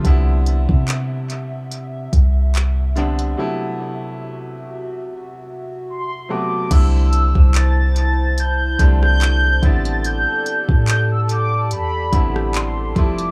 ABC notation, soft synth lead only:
X:1
M:4/4
L:1/16
Q:"Swing 16ths" 1/4=72
K:C
V:1 name="Soft synth lead"
z16 | z12 c'2 d'2 | e'4 a'4 g'3 g'3 a'2 | g'4 g' e' d'2 b4 c'2 d'2 |]